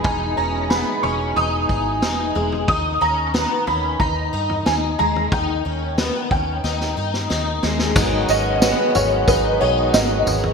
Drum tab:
CC |----------------|----------------|----------------|x---------------|
TB |----------------|----------------|----------------|x-x-x-x-x---x-x-|
SD |----o-------o---|----o-------o---|----o---oo-oo-oo|----o-------o---|
FT |o-----o-o-----oo|o-----o-o--o--oo|o-----o---------|o-----o-o-----oo|
BD |o---------o-----|o-------o-------|o-----o---------|o-------o-------|